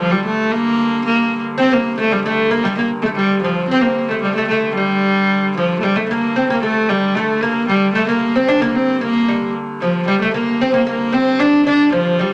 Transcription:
0.00 1.58 G2 medium
0.00 1.58 D3 medium
0.00 0.13 F3 medium
0.12 0.25 G3 medium
0.26 0.53 A3 medium
0.52 1.05 A#3 loud
1.05 1.42 A#3 medium
1.58 5.84 G2 medium
1.58 5.84 D3 medium
1.58 1.71 C4 medium
1.58 1.74 C4 loud
1.71 1.96 A#3 medium
1.71 1.99 A#3 medium
1.98 2.11 A3 medium
1.98 2.14 A3 medium
2.11 2.25 G3 medium
2.26 2.51 A3 medium
2.26 2.52 A3 medium
2.50 2.65 A#3 medium
2.64 2.76 G3 medium
2.64 2.78 G3 medium
2.77 2.89 A#3 medium
2.77 3.03 A#3 medium
3.02 3.09 A3 medium
3.02 3.18 A3 medium
3.16 3.41 G3 medium
3.16 3.44 G3 medium
3.42 3.68 F3 medium
3.42 3.72 F3 medium
3.69 3.83 C4 loud
3.69 4.10 C4 medium
3.81 4.10 A#3 medium
4.09 4.21 A3 medium
4.09 4.25 A3 medium
4.21 4.35 G3 medium
4.21 4.38 G3 medium
4.35 4.47 A3 medium
4.35 4.50 A3 medium
4.48 4.74 A3 medium
4.48 4.78 A3 medium
4.75 5.52 G3 medium
4.75 5.53 G3 medium
5.57 5.78 F3 medium
5.57 5.82 F3 medium
5.78 5.84 A3 medium
5.83 10.08 G2 medium
5.83 10.08 D3 medium
5.83 5.97 G3 medium
5.83 5.98 G3 medium
5.96 6.10 A3 medium
5.96 6.09 A3 medium
6.09 6.39 A#3 medium
6.09 6.35 A#3 medium
6.36 6.50 C4 medium
6.36 6.49 C4 medium
6.50 6.62 A#3 medium
6.63 6.88 A3 medium
6.63 6.91 A3 medium
6.89 7.16 G3 medium
6.89 7.17 G3 medium
7.14 7.43 A3 medium
7.14 7.41 A3 medium
7.41 7.68 A#3 medium
7.41 7.70 A#3 medium
7.68 7.93 G3 medium
7.68 7.97 G3 medium
7.94 8.07 A3 loud
7.94 8.08 A3 medium
8.08 8.37 A#3 medium
8.08 8.35 A#3 medium
8.36 8.50 C4 medium
8.36 8.49 C4 medium
8.48 8.62 D4 medium
8.48 8.63 D4 loud
8.61 8.77 A#3 medium
8.61 9.00 A#3 medium
8.76 9.01 C4 medium
9.01 9.26 A#3 medium
9.01 9.51 A#3 medium
9.28 9.53 G3 medium
9.81 10.06 F3 medium
9.81 10.08 F3 medium
10.08 12.33 G2 medium
10.08 12.33 D3 medium
10.08 10.20 G3 medium
10.08 10.22 G3 medium
10.22 10.34 A3 medium
10.34 10.61 A#3 medium
10.34 10.63 A#3 medium
10.61 10.74 C4 loud
10.61 10.73 C4 medium
10.74 10.85 A#3 medium
10.74 10.87 A#3 medium
10.87 11.12 A#3 medium
10.87 11.15 A#3 medium
11.12 11.40 C4 medium
11.12 11.41 C4 loud
11.40 11.66 D4 medium
11.40 11.65 D4 medium
11.66 11.91 D4 medium
11.66 11.94 D4 medium
11.92 12.19 F3 medium
11.92 12.22 F3 medium
12.19 12.33 G3 medium

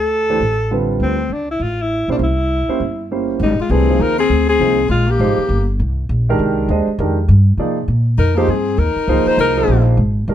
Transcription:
0.00 0.37 D2 medium
0.00 0.85 A4 medium
0.30 0.40 E3 medium
0.30 0.40 A3 medium
0.30 0.40 D4 medium
0.30 0.40 G4 medium
0.30 0.40 C5 medium
0.40 0.97 A1 medium
0.71 1.16 D3 medium
0.71 1.16 G3 medium
0.71 1.16 C4 soft
0.71 1.16 F4 medium
0.71 1.16 B4 medium
1.00 1.28 D2 medium
1.00 1.34 C4 medium
1.29 1.58 C#2 medium
1.29 1.50 D4 medium
1.51 1.64 E4 medium
1.59 2.05 A1 medium
1.59 1.83 F4 medium
1.82 2.10 E4 medium
2.08 2.18 B1 medium
2.08 2.19 A#3 medium
2.08 2.19 C#4 soft
2.08 2.16 D4 medium
2.08 2.20 E4 soft
2.08 2.19 G4 soft
2.08 2.20 C5 medium
2.19 2.65 C2 medium
2.23 3.08 E4 medium
2.68 2.79 A#3 soft
2.68 2.79 C#4 medium
2.68 2.79 E4 medium
2.68 2.80 G4 soft
2.68 2.79 C5 medium
2.68 muted upright bass stroke soft
2.80 3.37 G1 medium
3.11 3.41 A#3 medium
3.11 3.41 C#4 soft
3.11 3.41 E4 soft
3.11 3.41 G4 soft
3.11 3.41 C5 medium
3.39 3.57 G#1 medium
3.39 3.59 G3 medium
3.39 3.59 D#4 medium
3.59 3.72 G#3 medium
3.59 3.73 F4 medium
3.59 muted upright bass stroke soft
3.69 3.99 C2 medium
3.69 3.87 E3 soft
3.69 3.87 A3 soft
3.69 4.02 C4 medium
3.69 3.87 D4 soft
3.69 3.87 G4 soft
3.69 4.04 G#4 medium
3.69 3.87 B4 soft
3.89 4.15 F3 medium
3.89 4.15 A#3 soft
3.89 4.16 D#4 soft
3.89 4.16 G#4 soft
3.89 4.16 C5 medium
4.00 4.29 D#2 medium
4.00 4.18 D#4 medium
4.00 4.19 A#4 loud
4.19 4.47 C4 medium
4.19 4.47 G#4 medium
4.30 4.59 D2 medium
4.49 4.87 C4 medium
4.49 4.87 G#4 medium
4.59 4.89 C2 medium
4.59 4.77 F3 medium
4.59 4.77 A#3 soft
4.59 4.77 D#4 soft
4.59 4.77 G#4 soft
4.59 4.78 C5 medium
4.89 5.19 A#1 medium
4.89 5.09 G#3 medium
4.89 5.12 F4 medium
5.07 5.68 A#3 medium
5.07 5.69 G4 medium
5.19 5.37 G#1 medium
5.19 5.37 F3 medium
5.19 5.37 A#3 medium
5.19 5.37 D#4 medium
5.19 5.37 G#4 medium
5.19 5.37 C5 medium
5.38 muted upright bass stroke soft
5.49 5.78 G1 medium
5.79 6.09 C2 medium
6.09 6.38 A#1 medium
6.29 6.68 D#3 medium
6.29 6.68 G#3 medium
6.29 6.68 D4 medium
6.29 6.68 G4 medium
6.29 6.68 A#4 medium
6.39 6.68 C2 medium
6.69 6.86 D#2 medium
6.69 6.86 G#3 medium
6.69 6.87 D4 medium
6.69 6.86 G4 soft
6.69 6.87 C5 medium
6.69 6.87 D#5 medium
6.87 muted upright bass stroke soft
6.99 7.28 F2 medium
6.99 7.16 D#3 medium
6.99 7.16 G#3 medium
6.99 7.16 D4 medium
6.99 7.16 G4 medium
6.99 7.16 A#4 medium
7.28 7.57 G2 medium
7.58 7.87 C3 medium
7.58 7.76 F3 medium
7.58 7.76 A#3 medium
7.58 7.76 D#4 medium
7.58 7.76 G#4 medium
7.58 7.76 D5 medium
7.88 8.17 A#2 medium
8.18 8.47 F2 medium
8.18 8.37 D#4 medium
8.18 8.39 A#4 medium
8.36 8.48 F3 medium
8.36 8.48 A#3 medium
8.36 8.48 D#4 medium
8.36 8.52 G4 medium
8.36 8.48 G#4 medium
8.36 8.48 C5 medium
8.47 8.77 G2 medium
8.47 8.80 C4 medium
8.47 8.80 G#4 medium
8.78 8.95 D#2 medium
8.78 9.28 D#4 medium
8.78 9.29 A#4 medium
8.96 muted upright bass stroke soft
9.07 9.25 C#2 medium
9.07 9.53 F3 medium
9.07 9.53 A#3 medium
9.07 9.53 D#4 medium
9.07 9.54 G#4 medium
9.07 9.54 C5 medium
9.26 9.39 D#4 medium
9.26 9.39 C5 medium
9.26 muted upright bass stroke soft
9.38 9.67 C2 medium
9.38 9.84 D#4 medium
9.38 9.85 A#4 medium
9.57 9.96 F3 medium
9.57 9.96 A#3 medium
9.57 9.96 D#4 medium
9.57 9.96 G#4 medium
9.57 9.96 C5 medium
9.68 9.97 A#1 medium
9.97 10.27 G#1 medium
10.28 10.34 G1 medium
10.28 10.34 D#3 medium
10.28 10.34 G#3 soft
10.28 10.34 D4 medium
10.28 10.34 G4 medium
10.28 10.34 A#4 medium

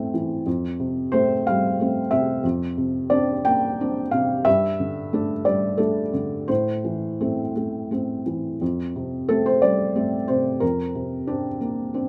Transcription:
0.00 0.42 A2 soft
0.00 0.14 E3 soft
0.00 0.48 A3 soft
0.00 0.48 C4 soft
0.00 0.13 A4 medium
0.14 0.46 E3 soft
0.46 2.40 F2 soft
0.80 1.33 C3 soft
1.12 1.43 A3 soft
1.12 1.44 C4 soft
1.12 1.46 C5 medium
1.47 1.99 G3 soft
1.47 2.11 F5 medium
1.80 2.09 A3 soft
1.80 2.09 C4 soft
2.11 2.44 C3 soft
2.11 2.43 E5 medium
2.44 4.42 F2 medium
2.77 3.33 C3 soft
3.10 3.43 C4 soft
3.10 3.43 D4 soft
3.10 3.46 D5 medium
3.45 4.00 A#3 soft
3.45 4.12 G5 medium
3.81 4.10 C4 soft
3.81 4.10 D4 soft
4.11 4.46 C3 soft
4.11 4.45 F5 medium
4.45 6.45 G2 medium
4.45 5.45 E5 medium
4.80 5.33 D3 soft
5.13 5.43 A3 soft
5.13 5.43 D4 soft
5.45 6.00 G3 soft
5.45 5.79 D5 medium
5.78 6.10 A3 soft
5.78 6.10 D4 soft
5.78 6.48 A4 medium
6.13 6.49 D3 soft
6.48 8.57 A2 soft
6.48 7.89 C5 medium
6.84 7.41 E3 soft
7.21 7.52 A3 soft
7.21 7.52 C4 soft
7.56 7.89 A3 soft
7.91 8.23 A3 soft
7.91 8.23 C4 soft
8.26 8.61 E3 soft
8.61 10.58 F2 soft
8.96 9.49 C3 soft
9.29 9.59 A3 soft
9.29 9.60 C4 soft
9.29 9.45 A4 medium
9.46 9.62 C5 medium
9.62 10.16 G3 soft
9.62 10.28 D5 medium
9.96 10.25 A3 soft
9.96 10.25 C4 soft
10.28 10.62 C3 soft
10.28 10.61 C5 medium
10.60 12.09 F2 soft
10.60 12.09 A#4 medium
10.95 11.48 C3 soft
11.27 11.58 C4 soft
11.27 11.58 D4 soft
11.61 12.09 A#3 soft
11.94 12.09 C4 soft
11.94 12.09 D4 soft

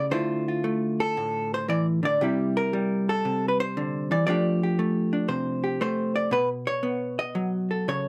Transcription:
0.00 0.11 C#3 medium
0.11 1.68 D3 medium
0.11 0.63 A3 soft
0.11 2.19 E4 soft
0.11 0.47 F4 soft
0.11 1.00 C5 medium
0.48 2.19 F4 soft
0.64 2.19 A3 medium
1.00 1.52 A4 medium
1.17 2.21 A2 medium
1.54 1.69 C5 medium
1.68 2.02 E3 medium
1.68 1.86 D5 medium
2.03 2.20 D3 medium
2.03 2.56 D5 medium
2.21 3.24 C3 medium
2.21 2.73 G3 soft
2.21 4.26 E4 soft
2.21 4.27 G4 soft
2.57 3.08 A#4 medium
2.73 4.28 G3 medium
3.09 3.48 A4 medium
3.25 4.26 C3 medium
3.48 3.59 B4 medium
3.60 4.11 C5 medium
3.77 4.11 D3 medium
4.11 4.27 E3 medium
4.11 4.25 D5 medium
4.27 6.29 F3 medium
4.27 4.79 A3 soft
4.27 5.12 D4 soft
4.27 4.62 G4 soft
4.27 5.28 D5 medium
4.63 5.62 G4 soft
4.79 5.80 A3 medium
5.13 6.29 D4 soft
5.28 6.29 C3 medium
5.28 5.79 C5 medium
5.64 6.29 G4 soft
5.81 6.34 A3 medium
5.81 6.15 C5 medium
6.16 6.32 D5 medium
6.31 7.88 B2 medium
6.31 6.49 B4 medium
6.67 7.18 C#5 medium
6.83 8.08 B3 medium
7.19 7.88 D#5 medium
7.35 8.08 F#3 medium
7.71 8.08 A4 soft
7.88 8.08 C#3 medium
7.88 8.08 C#5 medium

